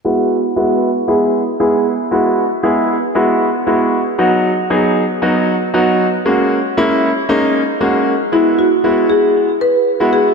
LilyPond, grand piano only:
\new Staff \with { instrumentName = "Grand piano" } { \time 4/4 \key e \lydian \tempo 4 = 116 <gis b e' fis'>8 r8 <gis b e' fis'>8 r8 <gis b e' gis'>8 r8 <gis b e' gis'>8 r8 | <gis b e' fis'>8 r8 <gis b e' gis'>8 r8 <gis b e' fis'>8 r8 <gis b e' fis'>8 r8 | <fis b dis' fis'>8 r8 <fis b dis' gis'>8 r8 <fis b dis' fis'>8 r8 <fis b dis' fis'>8 r8 | <gis ais cis' fis'>8 r8 <gis ais cis' e'>8 r8 <gis ais cis' dis'>8 r8 <gis ais cis' fis'>8 r8 |
<gis b e' fis'>8 r8 <gis b e' fis'>4~ <gis b e' fis'>16 r4 <gis b e' fis'>8. | }